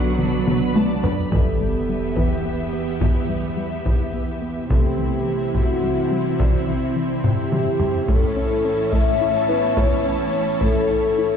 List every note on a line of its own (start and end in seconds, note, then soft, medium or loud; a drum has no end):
0.00 0.38 B1 medium
0.00 0.48 D3 medium
0.00 1.32 D3 medium
0.00 1.04 F#3 medium
0.00 1.31 B3 medium
0.00 1.02 F#4 medium
0.00 0.72 A4 medium
0.00 0.20 B4 soft
0.00 1.32 B4 medium
0.00 1.32 D5 medium
0.00 0.20 F#5 soft
0.18 0.30 F#3 medium
0.18 0.30 D4 medium
0.18 0.46 F#4 soft
0.18 0.46 D5 soft
0.18 0.45 B5 soft
0.18 taiko mid medium
0.47 1.22 B1 medium
0.47 0.64 B3 medium
0.47 1.28 D4 medium
0.47 0.77 B4 soft
0.47 0.73 B5 medium
0.47 taiko mid medium
0.75 0.93 F#4 medium
0.75 1.04 F#4 soft
0.75 1.04 D5 soft
0.75 1.04 A5 medium
0.75 taiko high medium
1.03 1.14 F#3 soft
1.03 1.15 D4 soft
1.03 1.21 B4 medium
1.03 1.32 B4 soft
1.03 1.32 B5 medium
1.03 taiko low medium
1.31 4.66 E2 medium
1.31 1.49 E3 medium
1.31 4.67 E3 medium
1.31 4.66 B3 medium
1.31 4.66 G4 soft
1.31 2.17 A4 medium
1.31 4.67 B4 medium
1.31 4.66 E5 soft
1.31 4.66 E5 medium
1.31 taiko medium
1.31 sub drop medium
1.61 1.78 G3 medium
1.89 2.06 G3 medium
2.16 2.34 E3 medium
2.16 3.81 B3 soft
2.16 3.02 G4 medium
2.16 3.81 B4 soft
2.16 taiko medium
2.45 2.62 B3 soft
2.73 2.90 B3 medium
3.01 3.18 E3 medium
3.01 3.86 E4 medium
3.01 taiko medium
3.29 3.46 G3 medium
3.57 3.74 G3 medium
3.85 4.02 E3 medium
3.85 4.14 E4 medium
3.85 taiko medium
4.14 4.31 B3 medium
4.42 4.59 B3 medium
4.70 4.87 C3 medium
4.70 8.08 C3 medium
4.70 8.05 E3 medium
4.70 6.36 A3 soft
4.70 8.05 C4 medium
4.70 8.06 E4 medium
4.70 8.05 E4 soft
4.70 5.50 G4 medium
4.70 6.36 A4 soft
4.70 8.09 C5 medium
4.70 8.04 E5 soft
4.70 8.05 E5 medium
4.70 taiko medium
4.98 5.15 E3 medium
5.27 5.43 E3 medium
5.55 5.72 C3 medium
5.55 6.38 F#4 medium
5.55 taiko medium
5.83 6.00 G3 soft
6.11 6.28 G3 medium
6.40 6.56 C3 medium
6.40 7.23 E4 medium
6.40 8.05 D5 soft
6.40 taiko medium
6.68 6.85 E3 medium
6.96 7.13 E3 medium
7.24 7.41 C3 medium
7.24 8.09 G4 medium
7.24 taiko low-mid medium
7.52 7.69 G3 medium
7.52 taiko mid medium
7.80 7.97 G3 medium
7.80 taiko low medium
8.07 11.37 A2 medium
8.07 11.37 E3 medium
8.07 8.25 A3 medium
8.07 11.37 C#4 medium
8.07 11.37 E4 medium
8.07 8.92 A4 medium
8.07 11.37 C#5 medium
8.07 11.37 E5 medium
8.07 11.37 A5 medium
8.07 taiko medium
8.36 8.53 C#4 medium
8.36 10.02 E4 soft
8.36 10.02 E5 medium
8.65 8.82 C#4 medium
8.92 9.09 A3 medium
8.92 9.77 E5 loud
8.92 taiko medium
9.21 9.38 E4 medium
9.49 11.14 B3 soft
9.49 9.66 E4 medium
9.49 11.14 B4 medium
9.77 9.94 A3 medium
9.77 10.62 C#5 medium
9.77 taiko medium
10.05 10.22 C#4 medium
10.34 10.51 C#4 medium
10.61 10.79 A3 medium
10.61 11.37 A4 loud
10.61 taiko medium
10.90 11.07 E4 medium
11.18 11.35 E4 medium